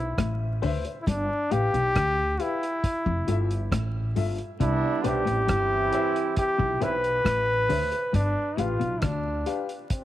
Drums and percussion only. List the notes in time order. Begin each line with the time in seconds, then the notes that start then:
0.18 kick, cross-stick, closed hi-hat
0.63 open hi-hat
0.85 closed hi-hat
1.07 kick, closed hi-hat
1.52 closed hi-hat
1.74 closed hi-hat
1.96 kick, cross-stick, closed hi-hat
2.40 closed hi-hat
2.63 closed hi-hat
2.84 kick, closed hi-hat
3.06 kick
3.28 closed hi-hat
3.51 closed hi-hat
3.72 kick, cross-stick, closed hi-hat
4.16 open hi-hat
4.38 closed hi-hat
4.61 kick, closed hi-hat
5.04 closed hi-hat
5.27 closed hi-hat
5.49 kick, cross-stick, closed hi-hat
5.93 closed hi-hat
6.16 closed hi-hat
6.37 kick, closed hi-hat
6.60 kick
6.82 closed hi-hat
7.04 closed hi-hat
7.25 kick, cross-stick, closed hi-hat
7.70 open hi-hat
7.92 closed hi-hat
8.14 kick, closed hi-hat
8.58 closed hi-hat
8.81 closed hi-hat
9.02 kick, cross-stick, closed hi-hat
9.46 closed hi-hat
9.69 closed hi-hat
9.90 kick, closed hi-hat